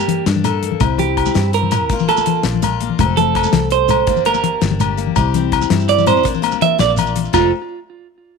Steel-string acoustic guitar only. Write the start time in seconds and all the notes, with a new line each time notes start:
Already playing: A#3 D4
0.27 G3 D4
0.45 A4
0.64 A#3
0.80 C3 C4 E4, muted steel-string acoustic guitar stroke
1.00 C4
1.34 E3 E4
1.55 G4
1.90 A#2 A#3 D4 F4
2.09 A#3
2.43 F3 D4
2.62 F4
2.82 A#3
2.99 F2 A3 C4 A4
3.18 A3
3.89 F2
4.07 G2 A#3 D4 G4
4.26 A#3
4.61 G3 D4
4.80 G4
4.97 A#3
5.16 C3 C4 E4 G4
5.36 C4
5.70 E3 E4
5.89 G4
6.07 C4
6.23 A#2 A#3 D4 F4
6.42 A#3
6.78 F3 D4
6.98 F4
7.15 muted steel-string acoustic guitar stroke
7.33 F2 F3 A3 C4 A4